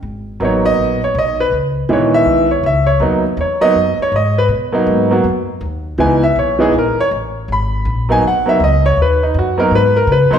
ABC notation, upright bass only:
X:1
M:4/4
L:1/8
Q:"Swing" 1/4=161
K:G#m
V:1 name="Upright bass" clef=bass
G,,,2 =A,,,2 ^A,,,2 B,,,2 | C,,2 A,,,2 B,,,2 C,,2 | D,,2 E,, z F,, z G,,2 | B,,2 G,,2 F,,2 D,,2 |
C,,2 B,,,2 A,,, z =A,,,2 | G,,,2 A,,,2 B,,,2 C,,2 | D,,2 F,,2 G,,2 C, z |]